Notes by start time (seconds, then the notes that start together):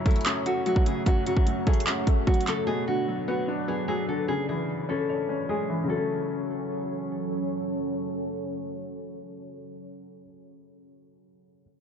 Already playing: F#2 C#3 F#3 A3 F#4 C#5 F#5
0.06 A3 E4, kick, closed hi-hat
0.11 closed hi-hat
0.16 closed hi-hat
0.21 closed hi-hat
0.26 C#4, clap, closed hi-hat
0.46 A3 F#4, closed hi-hat
0.66 F#3 F#4, closed hi-hat
0.76 kick
0.86 C#3 G#4, closed hi-hat
1.06 F#2 F#4, kick, closed hi-hat
1.26 C#3 F#4, closed hi-hat
1.37 kick
1.47 F#3, closed hi-hat
1.67 A3 G#4, kick, closed hi-hat
1.73 closed hi-hat
1.80 closed hi-hat
1.87 C#4, clap, closed hi-hat
2.07 A3, kick, closed hi-hat
2.27 F#3 F#4, kick, closed hi-hat
2.34 closed hi-hat
2.41 closed hi-hat
2.47 C#3 A4, clap, closed hi-hat
2.67 B2 F#3 D4 G#4 B4 D5
2.87 D3 F#4
3.08 F#3
3.28 B3 F#4
3.48 D4
3.68 B3 G#4
3.88 F#3 G#4
4.08 D3 A4
4.28 C#3 E3 C#4 G#4 C#5 G#5
4.49 E3 G#4
4.89 C#4 A4
5.09 C#5
5.29 C#4
5.49 G#3 G#4
5.70 E3
5.84 C#3 F#3
5.90 F#3 A3 C#4 A4 C#5
5.96 C#4